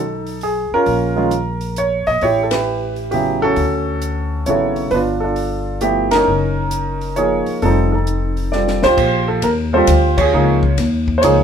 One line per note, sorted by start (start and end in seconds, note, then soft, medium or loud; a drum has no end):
0.00 0.68 B1 medium
0.00 0.38 D#4 soft
0.00 0.44 A4 medium
0.27 open hi-hat soft
0.41 0.74 G#4 medium
0.41 open hi-hat soft
0.71 1.16 C#4 medium
0.71 1.16 F4 medium
0.71 1.81 A#4 loud
0.71 muted upright bass stroke soft
0.86 2.03 A#1 medium
0.86 kick soft
0.86 open hi-hat soft
1.16 1.30 D#3 medium
1.16 1.31 G#3 medium
1.16 1.31 C#4 medium
1.16 1.31 F4 medium
1.31 closed hi-hat soft
1.61 open hi-hat soft
1.76 2.09 C#5 medium
1.76 closed hi-hat soft
2.07 2.21 A#1 medium
2.07 2.23 D#5 medium
2.07 open hi-hat soft
2.21 3.53 A1 medium
2.21 2.51 E4 medium
2.21 2.51 G4 medium
2.21 2.42 C#5 medium
2.21 kick soft
2.21 open hi-hat soft
2.43 2.53 A4 medium
2.51 3.09 E4 soft
2.51 3.09 G4 soft
2.51 2.94 B4 medium
2.51 snare medium
2.51 ride medium
2.96 open hi-hat soft
3.11 3.58 C#3 soft
3.11 3.58 F#3 soft
3.11 3.58 B3 soft
3.11 3.58 E4 medium
3.11 3.40 G4 medium
3.11 open hi-hat soft
3.42 4.45 C#4 medium
3.42 4.44 F#4 medium
3.42 4.48 A4 loud
3.56 4.43 D2 medium
3.56 kick soft
3.56 open hi-hat soft
4.02 closed hi-hat soft
4.46 4.89 G#1 medium
4.46 4.93 C#3 soft
4.46 4.93 F#3 soft
4.46 4.93 B3 soft
4.46 4.93 E4 medium
4.46 4.91 F#4 medium
4.46 4.91 A4 medium
4.46 4.94 C#5 medium
4.46 closed hi-hat soft
4.76 open hi-hat soft
4.91 6.23 G1 medium
4.91 5.23 D4 medium
4.91 5.22 F4 medium
4.91 4.98 B4 medium
4.91 kick soft
4.91 open hi-hat soft
5.20 5.79 D4 medium
5.20 5.79 F4 medium
5.20 5.83 A4 medium
5.36 open hi-hat soft
5.81 6.28 F3 medium
5.81 6.28 A3 medium
5.81 6.28 B3 medium
5.81 6.28 E4 medium
5.81 6.13 G4 medium
5.81 closed hi-hat soft
6.11 7.15 D#4 medium
6.11 7.18 A#4 loud
6.11 snare medium
6.11 ride medium
6.15 7.15 C#4 medium
6.27 7.44 F#1 medium
6.71 closed hi-hat medium
7.01 open hi-hat soft
7.16 7.63 F3 medium
7.16 7.63 A#3 soft
7.16 7.63 D#4 soft
7.16 7.63 G#4 medium
7.16 7.61 A#4 medium
7.16 7.64 C#5 medium
7.16 closed hi-hat soft
7.46 muted upright bass stroke soft
7.46 open hi-hat soft
7.62 8.79 F1 medium
7.62 7.90 G3 soft
7.62 7.64 C4 soft
7.62 7.93 C4 medium
7.62 7.94 D#4 medium
7.62 7.90 F4 soft
7.62 7.91 A4 medium
7.62 kick soft
7.62 open hi-hat soft
7.92 8.52 C4 soft
7.92 8.80 D#4 soft
7.92 8.53 A4 medium
8.07 closed hi-hat soft
8.37 open hi-hat soft
8.52 8.80 G3 medium
8.52 8.80 C4 medium
8.52 8.81 F4 soft
8.52 8.81 A4 medium
8.52 8.80 D5 medium
8.52 snare soft
8.68 snare medium
8.83 8.96 B1 medium
8.83 9.40 F4 medium
8.83 9.40 G4 medium
8.83 9.25 C5 loud
8.83 snare medium
8.97 9.41 A#1 medium
8.97 kick medium
8.97 crash medium
9.28 9.44 A4 medium
9.42 9.86 D#2 medium
9.42 9.50 A#4 medium
9.42 kick soft
9.42 hi-hat pedal medium
9.42 ride medium
9.73 9.87 G3 medium
9.73 9.87 C4 medium
9.73 9.76 F4 medium
9.73 9.87 A4 medium
9.73 10.15 C5 medium
9.78 10.18 F4 medium
9.78 10.31 G4 medium
9.87 10.31 D2 medium
9.87 kick soft
9.87 hi-hat pedal medium
9.87 ride medium
10.17 10.75 F4 medium
10.17 10.33 G#4 medium
10.17 10.74 C#5 medium
10.17 kick medium
10.17 crash medium
10.33 10.77 C#2 medium
10.33 10.60 F3 medium
10.33 10.61 A#3 medium
10.33 10.61 D#4 soft
10.33 10.61 G#4 medium
10.63 kick medium
10.77 11.21 D#2 medium
10.77 kick soft
10.77 snare soft
10.77 ride medium
11.08 kick soft
11.18 11.22 C5 medium
11.18 11.44 C#5 medium
11.23 11.44 C#2 medium
11.23 11.44 F3 medium
11.23 11.44 A#3 medium
11.23 11.44 D#4 medium
11.23 11.44 G#4 medium
11.23 kick soft
11.23 hi-hat pedal medium
11.23 ride medium